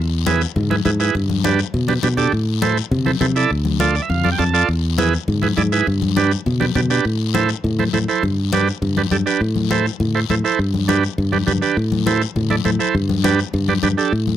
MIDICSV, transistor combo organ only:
0, 0, Header, 1, 2, 480
1, 0, Start_track
1, 0, Key_signature, 0, "minor"
1, 0, Tempo, 294840
1, 1874, Time_signature, 4, 2, 24, 8
1, 23393, End_track
2, 0, Start_track
2, 0, Title_t, "Transistor combo organ"
2, 0, Program_c, 0, 18
2, 430, Note_on_c, 0, 64, 84
2, 433, Note_on_c, 0, 68, 80
2, 442, Note_on_c, 0, 71, 90
2, 684, Note_off_c, 0, 64, 0
2, 685, Note_off_c, 0, 68, 0
2, 690, Note_off_c, 0, 71, 0
2, 1143, Note_on_c, 0, 64, 86
2, 1149, Note_on_c, 0, 68, 73
2, 1158, Note_on_c, 0, 71, 93
2, 1232, Note_off_c, 0, 64, 0
2, 1235, Note_off_c, 0, 68, 0
2, 1240, Note_off_c, 0, 71, 0
2, 1386, Note_on_c, 0, 64, 75
2, 1393, Note_on_c, 0, 68, 72
2, 1401, Note_on_c, 0, 71, 84
2, 1474, Note_off_c, 0, 64, 0
2, 1477, Note_off_c, 0, 68, 0
2, 1481, Note_off_c, 0, 71, 0
2, 1624, Note_on_c, 0, 64, 84
2, 1632, Note_on_c, 0, 68, 76
2, 1638, Note_on_c, 0, 71, 82
2, 1868, Note_off_c, 0, 64, 0
2, 1873, Note_off_c, 0, 68, 0
2, 1875, Note_off_c, 0, 71, 0
2, 2352, Note_on_c, 0, 62, 80
2, 2356, Note_on_c, 0, 67, 77
2, 2363, Note_on_c, 0, 71, 92
2, 2605, Note_off_c, 0, 62, 0
2, 2606, Note_off_c, 0, 67, 0
2, 2610, Note_off_c, 0, 71, 0
2, 3061, Note_on_c, 0, 62, 78
2, 3072, Note_on_c, 0, 67, 66
2, 3077, Note_on_c, 0, 71, 86
2, 3151, Note_off_c, 0, 62, 0
2, 3156, Note_off_c, 0, 67, 0
2, 3159, Note_off_c, 0, 71, 0
2, 3302, Note_on_c, 0, 62, 72
2, 3308, Note_on_c, 0, 67, 65
2, 3317, Note_on_c, 0, 71, 77
2, 3391, Note_off_c, 0, 62, 0
2, 3394, Note_off_c, 0, 67, 0
2, 3399, Note_off_c, 0, 71, 0
2, 3534, Note_on_c, 0, 62, 74
2, 3538, Note_on_c, 0, 67, 69
2, 3545, Note_on_c, 0, 69, 91
2, 3783, Note_off_c, 0, 62, 0
2, 3785, Note_off_c, 0, 67, 0
2, 3789, Note_off_c, 0, 69, 0
2, 4263, Note_on_c, 0, 64, 85
2, 4270, Note_on_c, 0, 69, 74
2, 4275, Note_on_c, 0, 72, 87
2, 4519, Note_off_c, 0, 64, 0
2, 4523, Note_off_c, 0, 69, 0
2, 4526, Note_off_c, 0, 72, 0
2, 4978, Note_on_c, 0, 64, 79
2, 4982, Note_on_c, 0, 69, 69
2, 4989, Note_on_c, 0, 72, 90
2, 5069, Note_off_c, 0, 64, 0
2, 5071, Note_off_c, 0, 69, 0
2, 5075, Note_off_c, 0, 72, 0
2, 5219, Note_on_c, 0, 64, 71
2, 5222, Note_on_c, 0, 69, 64
2, 5232, Note_on_c, 0, 72, 77
2, 5310, Note_off_c, 0, 64, 0
2, 5311, Note_off_c, 0, 69, 0
2, 5316, Note_off_c, 0, 72, 0
2, 5463, Note_on_c, 0, 64, 86
2, 5476, Note_on_c, 0, 69, 72
2, 5481, Note_on_c, 0, 74, 95
2, 5708, Note_off_c, 0, 64, 0
2, 5714, Note_off_c, 0, 69, 0
2, 5717, Note_off_c, 0, 74, 0
2, 6185, Note_on_c, 0, 65, 83
2, 6191, Note_on_c, 0, 69, 74
2, 6196, Note_on_c, 0, 74, 91
2, 6413, Note_off_c, 0, 74, 0
2, 6433, Note_on_c, 0, 74, 71
2, 6441, Note_off_c, 0, 65, 0
2, 6444, Note_off_c, 0, 69, 0
2, 6544, Note_off_c, 0, 74, 0
2, 6547, Note_on_c, 0, 76, 69
2, 6661, Note_off_c, 0, 76, 0
2, 6669, Note_on_c, 0, 77, 67
2, 6899, Note_on_c, 0, 65, 79
2, 6906, Note_on_c, 0, 69, 73
2, 6914, Note_on_c, 0, 74, 83
2, 6990, Note_off_c, 0, 65, 0
2, 6993, Note_off_c, 0, 69, 0
2, 6997, Note_off_c, 0, 74, 0
2, 7005, Note_off_c, 0, 77, 0
2, 7030, Note_on_c, 0, 79, 69
2, 7137, Note_on_c, 0, 65, 79
2, 7140, Note_on_c, 0, 81, 62
2, 7142, Note_on_c, 0, 69, 66
2, 7143, Note_off_c, 0, 79, 0
2, 7148, Note_on_c, 0, 74, 77
2, 7228, Note_off_c, 0, 65, 0
2, 7231, Note_off_c, 0, 69, 0
2, 7234, Note_off_c, 0, 74, 0
2, 7385, Note_on_c, 0, 65, 86
2, 7389, Note_on_c, 0, 69, 76
2, 7396, Note_on_c, 0, 74, 89
2, 7592, Note_off_c, 0, 81, 0
2, 7629, Note_off_c, 0, 65, 0
2, 7631, Note_off_c, 0, 69, 0
2, 7634, Note_off_c, 0, 74, 0
2, 8108, Note_on_c, 0, 64, 87
2, 8117, Note_on_c, 0, 68, 87
2, 8120, Note_on_c, 0, 71, 97
2, 8363, Note_off_c, 0, 64, 0
2, 8367, Note_off_c, 0, 68, 0
2, 8369, Note_off_c, 0, 71, 0
2, 8823, Note_on_c, 0, 64, 75
2, 8837, Note_on_c, 0, 68, 78
2, 8842, Note_on_c, 0, 71, 82
2, 8912, Note_off_c, 0, 64, 0
2, 8919, Note_off_c, 0, 68, 0
2, 8922, Note_off_c, 0, 71, 0
2, 9066, Note_on_c, 0, 64, 85
2, 9072, Note_on_c, 0, 68, 74
2, 9080, Note_on_c, 0, 74, 89
2, 9154, Note_off_c, 0, 64, 0
2, 9157, Note_off_c, 0, 68, 0
2, 9161, Note_off_c, 0, 74, 0
2, 9315, Note_on_c, 0, 64, 83
2, 9319, Note_on_c, 0, 68, 79
2, 9327, Note_on_c, 0, 71, 90
2, 9554, Note_off_c, 0, 64, 0
2, 9557, Note_off_c, 0, 68, 0
2, 9561, Note_off_c, 0, 71, 0
2, 10035, Note_on_c, 0, 62, 83
2, 10046, Note_on_c, 0, 67, 78
2, 10047, Note_on_c, 0, 71, 91
2, 10287, Note_off_c, 0, 62, 0
2, 10292, Note_off_c, 0, 67, 0
2, 10293, Note_off_c, 0, 71, 0
2, 10748, Note_on_c, 0, 62, 85
2, 10750, Note_on_c, 0, 67, 72
2, 10760, Note_on_c, 0, 71, 85
2, 10835, Note_off_c, 0, 62, 0
2, 10837, Note_off_c, 0, 67, 0
2, 10842, Note_off_c, 0, 71, 0
2, 10996, Note_on_c, 0, 62, 74
2, 11000, Note_on_c, 0, 67, 71
2, 11008, Note_on_c, 0, 71, 82
2, 11080, Note_off_c, 0, 62, 0
2, 11082, Note_off_c, 0, 67, 0
2, 11086, Note_off_c, 0, 71, 0
2, 11235, Note_on_c, 0, 62, 85
2, 11242, Note_on_c, 0, 67, 71
2, 11250, Note_on_c, 0, 71, 90
2, 11475, Note_off_c, 0, 62, 0
2, 11479, Note_off_c, 0, 67, 0
2, 11483, Note_off_c, 0, 71, 0
2, 11949, Note_on_c, 0, 64, 85
2, 11958, Note_on_c, 0, 69, 73
2, 11961, Note_on_c, 0, 72, 94
2, 12205, Note_off_c, 0, 64, 0
2, 12210, Note_off_c, 0, 69, 0
2, 12211, Note_off_c, 0, 72, 0
2, 12680, Note_on_c, 0, 64, 79
2, 12687, Note_on_c, 0, 69, 72
2, 12692, Note_on_c, 0, 72, 82
2, 12763, Note_off_c, 0, 64, 0
2, 12766, Note_off_c, 0, 69, 0
2, 12769, Note_off_c, 0, 72, 0
2, 12915, Note_on_c, 0, 64, 67
2, 12925, Note_on_c, 0, 69, 70
2, 12927, Note_on_c, 0, 72, 81
2, 13001, Note_off_c, 0, 64, 0
2, 13005, Note_off_c, 0, 69, 0
2, 13007, Note_off_c, 0, 72, 0
2, 13162, Note_on_c, 0, 64, 80
2, 13168, Note_on_c, 0, 69, 78
2, 13174, Note_on_c, 0, 72, 87
2, 13400, Note_off_c, 0, 64, 0
2, 13404, Note_off_c, 0, 69, 0
2, 13406, Note_off_c, 0, 72, 0
2, 13886, Note_on_c, 0, 62, 84
2, 13891, Note_on_c, 0, 67, 78
2, 13901, Note_on_c, 0, 71, 93
2, 14135, Note_off_c, 0, 62, 0
2, 14137, Note_off_c, 0, 67, 0
2, 14143, Note_off_c, 0, 71, 0
2, 14605, Note_on_c, 0, 62, 83
2, 14611, Note_on_c, 0, 67, 75
2, 14617, Note_on_c, 0, 71, 85
2, 14687, Note_off_c, 0, 62, 0
2, 14690, Note_off_c, 0, 67, 0
2, 14693, Note_off_c, 0, 71, 0
2, 14839, Note_on_c, 0, 62, 83
2, 14847, Note_on_c, 0, 67, 71
2, 14852, Note_on_c, 0, 69, 86
2, 14924, Note_off_c, 0, 62, 0
2, 14928, Note_off_c, 0, 67, 0
2, 14930, Note_off_c, 0, 69, 0
2, 15074, Note_on_c, 0, 62, 85
2, 15080, Note_on_c, 0, 67, 72
2, 15088, Note_on_c, 0, 71, 83
2, 15317, Note_off_c, 0, 62, 0
2, 15321, Note_off_c, 0, 67, 0
2, 15325, Note_off_c, 0, 71, 0
2, 15802, Note_on_c, 0, 64, 84
2, 15808, Note_on_c, 0, 69, 78
2, 15812, Note_on_c, 0, 72, 88
2, 16054, Note_off_c, 0, 64, 0
2, 16057, Note_off_c, 0, 69, 0
2, 16059, Note_off_c, 0, 72, 0
2, 16521, Note_on_c, 0, 64, 82
2, 16525, Note_on_c, 0, 69, 70
2, 16528, Note_on_c, 0, 72, 88
2, 16606, Note_off_c, 0, 64, 0
2, 16607, Note_off_c, 0, 69, 0
2, 16609, Note_off_c, 0, 72, 0
2, 16766, Note_on_c, 0, 64, 78
2, 16773, Note_on_c, 0, 69, 65
2, 16779, Note_on_c, 0, 72, 85
2, 16848, Note_off_c, 0, 64, 0
2, 16852, Note_off_c, 0, 69, 0
2, 16855, Note_off_c, 0, 72, 0
2, 17002, Note_on_c, 0, 64, 84
2, 17009, Note_on_c, 0, 69, 76
2, 17014, Note_on_c, 0, 72, 92
2, 17242, Note_off_c, 0, 64, 0
2, 17246, Note_off_c, 0, 69, 0
2, 17248, Note_off_c, 0, 72, 0
2, 17711, Note_on_c, 0, 62, 86
2, 17722, Note_on_c, 0, 67, 78
2, 17724, Note_on_c, 0, 71, 95
2, 17969, Note_off_c, 0, 62, 0
2, 17974, Note_off_c, 0, 67, 0
2, 17976, Note_off_c, 0, 71, 0
2, 18431, Note_on_c, 0, 62, 85
2, 18437, Note_on_c, 0, 67, 75
2, 18442, Note_on_c, 0, 71, 92
2, 18521, Note_off_c, 0, 62, 0
2, 18524, Note_off_c, 0, 67, 0
2, 18526, Note_off_c, 0, 71, 0
2, 18667, Note_on_c, 0, 62, 71
2, 18671, Note_on_c, 0, 67, 61
2, 18679, Note_on_c, 0, 71, 77
2, 18759, Note_off_c, 0, 62, 0
2, 18761, Note_off_c, 0, 67, 0
2, 18765, Note_off_c, 0, 71, 0
2, 18911, Note_on_c, 0, 62, 78
2, 18919, Note_on_c, 0, 67, 76
2, 18921, Note_on_c, 0, 71, 85
2, 19157, Note_off_c, 0, 62, 0
2, 19161, Note_off_c, 0, 67, 0
2, 19162, Note_off_c, 0, 71, 0
2, 19641, Note_on_c, 0, 64, 93
2, 19642, Note_on_c, 0, 69, 74
2, 19651, Note_on_c, 0, 72, 93
2, 19894, Note_off_c, 0, 64, 0
2, 19894, Note_off_c, 0, 69, 0
2, 19899, Note_off_c, 0, 72, 0
2, 20353, Note_on_c, 0, 64, 76
2, 20362, Note_on_c, 0, 69, 77
2, 20362, Note_on_c, 0, 74, 95
2, 20442, Note_off_c, 0, 64, 0
2, 20446, Note_off_c, 0, 69, 0
2, 20446, Note_off_c, 0, 74, 0
2, 20592, Note_on_c, 0, 64, 70
2, 20595, Note_on_c, 0, 69, 63
2, 20604, Note_on_c, 0, 72, 80
2, 20681, Note_off_c, 0, 64, 0
2, 20682, Note_off_c, 0, 69, 0
2, 20687, Note_off_c, 0, 72, 0
2, 20830, Note_on_c, 0, 64, 81
2, 20839, Note_on_c, 0, 69, 67
2, 20849, Note_on_c, 0, 72, 88
2, 21076, Note_off_c, 0, 64, 0
2, 21081, Note_off_c, 0, 69, 0
2, 21085, Note_off_c, 0, 72, 0
2, 21553, Note_on_c, 0, 62, 87
2, 21561, Note_on_c, 0, 67, 78
2, 21572, Note_on_c, 0, 71, 102
2, 21809, Note_off_c, 0, 62, 0
2, 21813, Note_off_c, 0, 67, 0
2, 21818, Note_off_c, 0, 71, 0
2, 22277, Note_on_c, 0, 62, 82
2, 22286, Note_on_c, 0, 67, 76
2, 22289, Note_on_c, 0, 71, 90
2, 22363, Note_off_c, 0, 62, 0
2, 22367, Note_off_c, 0, 67, 0
2, 22369, Note_off_c, 0, 71, 0
2, 22512, Note_on_c, 0, 62, 78
2, 22519, Note_on_c, 0, 67, 74
2, 22528, Note_on_c, 0, 71, 92
2, 22600, Note_off_c, 0, 62, 0
2, 22604, Note_off_c, 0, 67, 0
2, 22608, Note_off_c, 0, 71, 0
2, 22749, Note_on_c, 0, 62, 89
2, 22754, Note_on_c, 0, 67, 76
2, 22762, Note_on_c, 0, 69, 90
2, 22994, Note_off_c, 0, 62, 0
2, 22997, Note_off_c, 0, 67, 0
2, 23001, Note_off_c, 0, 69, 0
2, 23393, End_track
0, 0, End_of_file